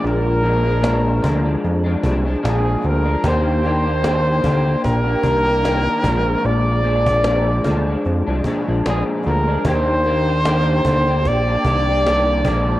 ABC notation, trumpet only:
X:1
M:4/4
L:1/8
Q:"Swing 16ths" 1/4=75
K:Eb
V:1 name="Trumpet"
B4 z2 A B | c4 B4 | d4 z2 A B | c4 d4 |]